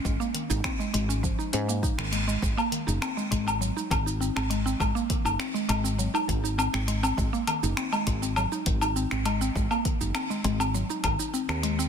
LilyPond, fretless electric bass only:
\new Staff \with { instrumentName = "Fretless electric bass" } { \clef bass \time 4/4 \key aes \mixolydian \tempo 4 = 101 aes,,16 r8 aes,,16 r8 aes,,8 r8 aes,8 r16 aes,,8 r16 | aes,,16 r8 ges,,16 r8 aes,,8 r8 aes,,8 r16 aes,,8 r16 | aes,,16 r8 ges,,16 r8 aes,,8 r8 aes,,8 r16 aes,,8 r16 | aes,,16 r8 ges,,16 r8 aes,,8 r8 aes,,8 r16 aes,,8 r16 |
aes,,16 r8 ges,,16 r8 aes,,8 r8 aes,,16 r8 ees,8 r16 | }